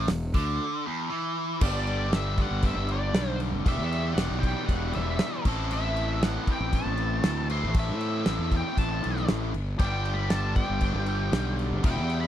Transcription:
0.08 fingered electric bass E1, overdriven electric guitar E2, snare, open hi-hat
0.34 fingered electric bass D2, overdriven electric guitar D3, kick, open hi-hat
0.86 overdriven electric guitar E2
1.10 overdriven electric guitar E3
1.61 fingered electric bass G1, overdriven electric guitar G2 D3 G3 B3 D4 G4, lead electric guitar D5, kick, crash
1.87 crash
2.13 lead electric guitar E5, snare, crash
2.38 kick, crash
2.42 lead electric guitar F#5
2.51 fingered electric bass G1
2.62 lead electric guitar E5, kick, crash
2.76 fingered electric bass G1
2.88 lead electric guitar D5, crash
3.14 fingered electric bass B1, snare, crash
3.40 crash
3.52 fingered electric bass F1
3.65 fingered electric bass E1, overdriven electric guitar E2 B2 E3 G3 E4 G4, lead electric guitar E5, kick, crash
3.77 fingered electric bass E2
3.93 crash
4.14 fingered electric bass E1, lead electric guitar F#5, snare, crash
4.31 fingered electric bass B1
4.40 lead electric guitar G5, kick, crash
4.67 fingered electric bass E1, lead electric guitar F#5, kick, crash
4.93 fingered electric bass E1, lead electric guitar E5, crash
5.19 snare, crash
5.45 fingered electric bass A1, overdriven electric guitar A2 E3 C4 E4 A4, kick, crash
5.71 lead electric guitar E5, crash
5.96 crash
6.23 lead electric guitar F#5, snare, crash
6.47 kick, crash
6.52 lead electric guitar G5
6.60 fingered electric bass A1
6.73 lead electric guitar A5, kick, crash
6.85 fingered electric bass A1
6.98 crash
7.23 fingered electric bass D2, snare, crash
7.50 overdriven electric guitar A2 E3 C4 E4 A4, lead electric guitar C6, crash
7.63 fingered electric bass A1
7.74 kick, crash
7.79 lead electric guitar E5
7.89 fingered electric bass A2
8.01 crash
8.26 fingered electric bass A1, snare, crash
8.39 fingered electric bass E2
8.52 kick, crash
8.56 lead electric guitar G5
8.77 fingered electric bass A1, lead electric guitar A5, kick, crash
9.04 fingered electric bass B1, crash
9.17 snare
9.28 fingered electric bass A1, snare, crash
9.54 fingered electric bass G1, crash
9.79 fingered electric bass G1, overdriven electric guitar G2 D3 G3 B3 D4 G4, lead electric guitar G5, kick, crash
10.05 crash
10.14 lead electric guitar B5
10.30 lead electric guitar A5, snare, crash
10.56 lead electric guitar G5, kick, crash
10.70 fingered electric bass G1
10.81 kick, crash
10.95 fingered electric bass G1
11.06 crash
11.32 fingered electric bass B1, snare, crash
11.59 crash
11.71 fingered electric bass G1
11.83 fingered electric bass E1, overdriven electric guitar E2 B2 E3 G3 B3 E4, lead electric guitar G5, kick, crash
11.96 fingered electric bass E2
12.10 crash
12.21 lead electric guitar B5

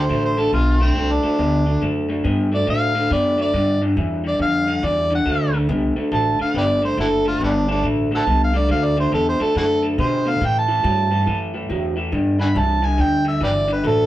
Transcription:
Already playing: harmonica C5
0.09 upright bass A1, clean electric guitar D3 A3
0.25 harmonica C5
0.37 clean electric guitar D3 A3, harmonica A4
0.53 upright bass B1, clean electric guitar D3 B3, harmonica F4
0.80 clean electric guitar D3 A3, harmonica C4
0.95 upright bass C2, clean electric guitar D3 A3
1.12 harmonica D4
1.23 clean electric guitar D3 A3, muted upright bass stroke
1.38 upright bass D2, clean electric guitar D3 B3
1.66 clean electric guitar D3 A3
1.81 upright bass F#2, clean electric guitar D3 A3
2.09 clean electric guitar D3 A3
2.24 upright bass G2, clean electric guitar D3 B3
2.52 clean electric guitar D3 A3, harmonica D5
2.67 upright bass A2, clean electric guitar D3 A3, harmonica F5
2.95 clean electric guitar D3 A3
3.10 upright bass F#2, clean electric guitar D3 B3, harmonica D5
3.38 clean electric guitar D3 A3, harmonica D5
3.53 clean electric guitar G2 D3, upright bass G2
3.82 clean electric guitar G2 D3
3.97 upright bass E2, clean electric guitar G2 E3
4.24 clean electric guitar G2 D3, harmonica D5
4.39 upright bass F2, clean electric guitar G2 D3, harmonica F5
4.67 clean electric guitar G2 D3
4.83 upright bass E2, clean electric guitar G2 E3, harmonica D5
5.10 clean electric guitar G2 D3
5.15 harmonica F#5
5.26 upright bass D2, clean electric guitar D3 A3
5.53 clean electric guitar D3 A3
5.69 upright bass C2, clean electric guitar D3 B3
5.96 clean electric guitar D3 A3, muted upright bass stroke
6.12 upright bass A1, clean electric guitar D3 A3, harmonica A5
6.39 clean electric guitar D3 A3, harmonica F5, muted upright bass stroke
6.54 upright bass G1, clean electric guitar D3 B3, harmonica G4 B4 D5
6.82 clean electric guitar D3 A3, harmonica C5
6.97 upright bass F#1, clean electric guitar D3 A3, harmonica E4 F#4 A4
7.25 clean electric guitar D3 A3, harmonica F4
7.41 upright bass G1, clean electric guitar D3 B3, harmonica G3 B3 D4
7.68 clean electric guitar D3 A3, harmonica D4
7.83 upright bass A1, clean electric guitar D3 A3
8.11 clean electric guitar D3 A3
8.15 harmonica E5 F#5 A5
8.27 upright bass C2, clean electric guitar D3 B3
8.44 harmonica F5
8.54 clean electric guitar D3 A3, harmonica D5
8.69 upright bass D2, clean electric guitar D3 A3, harmonica F5
8.84 harmonica D5
8.97 clean electric guitar D3 A3, harmonica C5
9.12 upright bass E2, clean electric guitar D3 B3, harmonica A4
9.29 harmonica C5
9.40 clean electric guitar D3 A3, harmonica A4, muted upright bass stroke
9.55 upright bass F#2, clean electric guitar D3 A3, harmonica E4 F#4 A4
9.83 clean electric guitar D3 A3
9.98 upright bass B2, clean electric guitar D3 B3, harmonica C5
10.25 clean electric guitar D3 A3
10.30 harmonica F5
10.41 upright bass A2, clean electric guitar A2 E3
10.45 harmonica G5
10.59 harmonica A5
10.68 clean electric guitar A2 E3
10.84 upright bass G2, clean electric guitar A2 F#3
11.11 clean electric guitar A2 E3
11.27 upright bass F#2, clean electric guitar A2 E3
11.54 clean electric guitar A2 E3
11.69 upright bass E2, clean electric guitar A2 F#3
11.96 clean electric guitar A2 E3
12.12 clean electric guitar G2 D3, upright bass G2
12.39 clean electric guitar G2 D3, harmonica F#5 G#5 B5
12.55 upright bass C2, clean electric guitar G2 E3, harmonica A5
12.82 clean electric guitar G2 D3, harmonica G#5
12.98 upright bass D2, clean electric guitar G2 D3, harmonica G5
13.25 clean electric guitar G2 D3, harmonica E5
13.41 upright bass G1, clean electric guitar G2 E3, harmonica G4 B4 D5
13.67 clean electric guitar G2 D3
13.73 harmonica B4
13.84 upright bass A1, clean electric guitar D3 A3, harmonica A4

